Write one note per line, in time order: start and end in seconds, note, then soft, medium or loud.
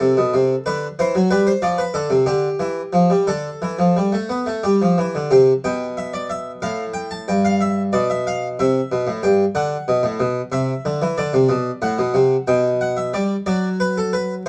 0.00 0.16 C3 medium
0.00 0.63 A4 medium
0.17 0.33 B2 medium
0.34 0.54 C3 medium
0.66 0.86 D3 medium
0.66 0.86 B4 medium
0.99 1.14 E3 medium
0.99 1.19 C5 medium
1.15 1.30 F#3 medium
1.31 1.51 G3 medium
1.31 1.46 B4 medium
1.47 1.62 C5 medium
1.62 1.82 F3 medium
1.62 1.78 D5 medium
1.78 1.94 B4 medium
1.94 2.10 D3 medium
1.94 2.14 A4 medium
2.10 2.26 C3 medium
2.26 2.47 D3 medium
2.26 3.24 G4 medium
2.60 2.80 E3 medium
2.93 3.09 F3 medium
3.10 3.27 G3 medium
3.27 3.48 D3 medium
3.27 4.59 A4 medium
3.62 3.78 E3 medium
3.79 3.95 F3 medium
3.97 4.12 G3 medium
4.12 4.29 A3 medium
4.29 4.46 B3 medium
4.46 4.63 A3 medium
4.63 4.80 G3 medium
4.63 5.29 G4 medium
4.82 4.97 F3 medium
4.98 5.14 E3 medium
5.15 5.31 D3 medium
5.31 5.51 C3 medium
5.31 5.52 G4 medium
5.64 6.60 B2 medium
5.64 5.85 G5 medium
5.97 6.13 E5 medium
6.14 6.30 D5 medium
6.30 6.50 E5 medium
6.62 7.25 A2 medium
6.62 6.82 F5 medium
6.94 7.10 G5 medium
7.11 7.27 A5 medium
7.28 7.91 G2 medium
7.28 7.44 G5 medium
7.45 7.60 F5 medium
7.61 7.81 E5 medium
7.93 8.57 B2 medium
7.93 8.09 D5 medium
8.10 8.26 E5 medium
8.27 8.47 F5 medium
8.59 8.79 C3 medium
8.59 9.22 E5 medium
8.92 9.07 B2 medium
9.07 9.23 A2 medium
9.23 9.43 G2 medium
9.23 9.43 G5 medium
9.55 9.75 D3 loud
9.55 10.49 F#5 medium
9.88 10.04 B2 medium
10.03 10.19 A2 medium
10.20 10.40 B2 medium
10.52 10.72 C3 medium
10.52 11.15 E5 medium
10.85 11.01 D3 loud
11.02 11.17 E3 medium
11.18 11.33 D3 loud
11.18 11.81 D5 medium
11.34 11.49 C3 medium
11.49 11.69 B2 loud
11.82 11.98 A2 medium
11.82 12.46 F#5 medium
11.99 12.15 B2 medium
12.14 12.35 C3 medium
12.47 13.12 B2 medium
12.47 12.68 G5 medium
12.81 12.97 F#5 medium
12.97 13.13 E5 medium
13.14 13.34 G3 medium
13.14 13.34 D5 medium
13.46 14.42 F#3 medium
13.46 13.67 D5 medium
13.80 13.96 B4 medium
13.97 14.13 A4 medium
14.13 14.33 B4 medium